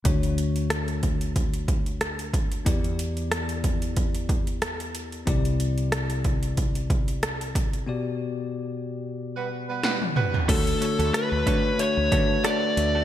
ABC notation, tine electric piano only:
X:1
M:4/4
L:1/8
Q:"Swing 16ths" 1/4=92
K:D
V:1 name="Tine electric piano"
[A,DFc]8 | [B,EGd]8 | [=CEGd]8 | [B,FGd]8 |
[A,DFc] [A,DFc] [A,DFB] [A,DFc] [A,DFc] [A,DFB] [A,DFB] [A,DFe] |]
V:2 name="Tine electric piano" clef=bass
D,3 z4 z | E,3 z4 z | =C,3 z4 z | B,,3 z4 z |
D,3 z4 z |]